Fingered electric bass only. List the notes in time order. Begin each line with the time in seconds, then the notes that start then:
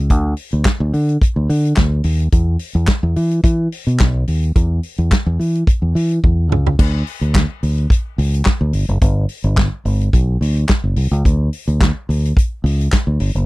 Already playing: C#2
0.10 D2
0.53 D2
0.80 D2
0.94 D3
1.36 D2
1.49 D3
1.78 D2
2.04 D#2
2.33 E2
2.75 E2
3.03 E2
3.16 E3
3.44 E3
3.87 B2
4.00 B1
4.28 D#2
4.56 E2
4.98 E2
5.26 E2
5.39 E3
5.82 E2
5.95 E3
6.24 E2
6.51 C#2
6.79 D2
7.21 D2
7.63 D2
8.18 C#2
8.61 D2
8.73 G1
8.89 F#1
9.02 G1
9.44 G1
9.85 G1
10.13 B1
10.41 D2
10.84 F#1
10.97 C2
11.11 C#2
11.25 D2
11.68 D2
12.09 D2
12.64 C#2
13.07 D2
13.20 G1
13.35 F#1